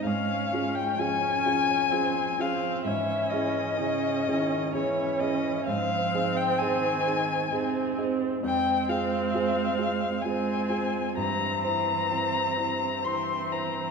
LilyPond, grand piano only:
\new Staff \with { instrumentName = "Grand piano" } { \time 3/4 \key aes \major \tempo 4 = 64 aes,8 <des' f' aes'>8 <des' f' aes'>8 <des' f' aes'>8 <des' f' aes'>8 <des' f' aes'>8 | aes,8 <des' fes' aes'>8 <des' fes' aes'>8 <des' fes' aes'>8 <des' fes' aes'>8 <des' fes' aes'>8 | aes,8 <c' ees' aes'>8 <c' ees' aes'>8 <c' ees' aes'>8 <c' ees' aes'>8 <c' ees' aes'>8 | \key f \minor f,8 <c' f' aes'>8 <c' f' aes'>8 <c' f' aes'>8 <c' f' aes'>8 <c' f' aes'>8 |
g,8 <c' e' c''>8 <c' e' c''>8 <c' e' c''>8 <c' e' c''>8 <c' e' c''>8 | }